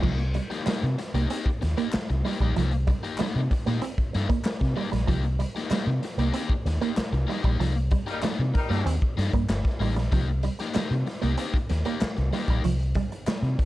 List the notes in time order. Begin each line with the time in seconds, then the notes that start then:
0.02 C2 F3 A#3 D#4 G4, kick, crash
0.19 muted overdriven electric guitar stroke, closed hi-hat
0.34 G3, muted overdriven electric guitar stroke, closed hi-hat
0.50 A#3 D#4 G4, muted clean electric guitar stroke, snare, closed hi-hat
0.66 G3 A#3 D#4 G4, muted fingered electric bass stroke, snare, clap, closed hi-hat
0.83 C3, closed hi-hat
0.98 muted clean electric guitar stroke, muted overdriven electric guitar stroke, snare, closed hi-hat
1.14 C2 A#3 D#4 G4, closed hi-hat
1.30 A#3 C4 D#4 G4, closed hi-hat
1.46 muted fingered electric bass stroke, kick, closed hi-hat
1.61 D#2, muted overdriven electric guitar stroke, muted clean electric guitar stroke, snare, closed hi-hat
1.77 A#3 D#4 G4, closed hi-hat
1.92 muted overdriven electric guitar stroke, muted fingered electric bass stroke, muted clean electric guitar stroke, snare, clap, closed hi-hat
2.10 C2, muted overdriven electric guitar stroke, closed hi-hat
2.25 G3 A#3 D#4 G4, snare, open hi-hat
2.40 A#1 G3 A#3 D#4 G4, kick, closed hi-hat
2.56 C2 F3 A#3 D#4 A4, closed hi-hat
2.71 muted overdriven electric guitar stroke, closed hi-hat
2.87 G3, muted overdriven electric guitar stroke, kick, closed hi-hat
3.03 A#3 D#4 G4, muted clean electric guitar stroke, closed hi-hat
3.18 G3 A#3 D#4 A4, muted fingered electric bass stroke, snare, clap, closed hi-hat
3.35 C3, closed hi-hat
3.51 muted clean electric guitar stroke, muted overdriven electric guitar stroke, kick, closed hi-hat
3.66 A#2 A#3 D#4 G4, snare, closed hi-hat
3.82 C4, muted overdriven electric guitar stroke, closed hi-hat
3.98 muted fingered electric bass stroke, kick, closed hi-hat
4.13 G2 A#3 D#4 A4, muted clean electric guitar stroke, snare, closed hi-hat
4.29 A#3, muted overdriven electric guitar stroke, kick, closed hi-hat
4.44 muted clean electric guitar stroke, muted overdriven electric guitar stroke, snare, clap, closed hi-hat
4.61 C3, kick, snare, closed hi-hat
4.76 G3 A#3 D#4 G4, open hi-hat
4.92 A#1 G3, muted overdriven electric guitar stroke, snare, closed hi-hat
5.07 C2 F3 A#3 D#4 G4, kick, closed hi-hat
5.24 muted overdriven electric guitar stroke, closed hi-hat
5.39 G3, muted overdriven electric guitar stroke, closed hi-hat
5.55 A#3 D#4 G4, muted clean electric guitar stroke, snare, closed hi-hat
5.71 G3 A#3 D#4 G4, muted fingered electric bass stroke, snare, clap, closed hi-hat
5.87 C3
6.02 muted clean electric guitar stroke, muted overdriven electric guitar stroke, snare, closed hi-hat
6.18 C2 A#3 D#4 G4, closed hi-hat
6.33 A#3 C4 D#4 G4, closed hi-hat
6.50 muted fingered electric bass stroke, kick
6.66 D#2, muted clean electric guitar stroke, muted overdriven electric guitar stroke, snare, closed hi-hat
6.81 A#3 D#4 G4, closed hi-hat
6.96 muted overdriven electric guitar stroke, muted fingered electric bass stroke, muted clean electric guitar stroke, snare, clap, closed hi-hat
7.13 C2, muted overdriven electric guitar stroke, closed hi-hat
7.27 G3 A#3 D#4 G4, snare, open hi-hat
7.43 A#1 G3 A#3 D#4 G4, kick, closed hi-hat
7.59 C2 F3 A#3 D#4 A4, closed hi-hat
7.75 muted overdriven electric guitar stroke, closed hi-hat
7.91 G3, muted overdriven electric guitar stroke, kick, closed hi-hat
8.06 G3 A#3 D#4 G4 A#4, muted clean electric guitar stroke, closed hi-hat
8.22 G3 A#3 D#4 A4, muted fingered electric bass stroke, snare, clap, closed hi-hat
8.39 C3
8.54 G3 D#4 A#4, muted clean electric guitar stroke, muted overdriven electric guitar stroke, kick, closed hi-hat
8.69 G2 A#3 D#4 G4, snare, closed hi-hat
8.85 D#2 C4, muted overdriven electric guitar stroke, closed hi-hat
9.02 kick
9.17 G2 A#3 D#4 A4, muted clean electric guitar stroke, snare, closed hi-hat
9.33 G2 A#3, muted overdriven electric guitar stroke, kick, closed hi-hat
9.49 G1, muted clean electric guitar stroke, muted overdriven electric guitar stroke, snare, clap, closed hi-hat
9.65 kick, snare, closed hi-hat
9.80 A1 G3 A#3 D#4 G4, open hi-hat
9.96 A#1 G3, muted overdriven electric guitar stroke, snare, closed hi-hat
10.12 C2 F3 A#3 D#4 G4, kick, closed hi-hat
10.29 muted overdriven electric guitar stroke
10.43 G3, muted overdriven electric guitar stroke, closed hi-hat
10.59 A#3 D#4 G4, muted clean electric guitar stroke, snare, closed hi-hat
10.74 G3 A#3 D#4 G4, muted fingered electric bass stroke, snare, clap, closed hi-hat
10.91 C3, closed hi-hat
11.06 muted clean electric guitar stroke, muted overdriven electric guitar stroke, snare, open hi-hat
11.22 C2 A#3 D#4 G4, closed hi-hat
11.37 A#3 C4 D#4 G4, closed hi-hat
11.53 muted fingered electric bass stroke, kick, closed hi-hat
11.69 D#2, muted clean electric guitar stroke, muted overdriven electric guitar stroke, snare, closed hi-hat
11.85 A#3 D#4 G4, closed hi-hat
12.01 muted overdriven electric guitar stroke, muted clean electric guitar stroke, muted fingered electric bass stroke, snare, clap, closed hi-hat
12.17 C2, muted overdriven electric guitar stroke, closed hi-hat
12.33 G3 A#3 D#4 G4, snare, open hi-hat
12.48 A#1 G3 A#3 D#4 G4, kick, closed hi-hat
12.64 C2 F3, closed hi-hat
12.79 closed hi-hat
12.95 G3, kick, closed hi-hat
13.12 muted clean electric guitar stroke, closed hi-hat
13.26 G3, muted fingered electric bass stroke, snare, clap, closed hi-hat
13.42 C3, closed hi-hat
13.59 muted clean electric guitar stroke, kick, closed hi-hat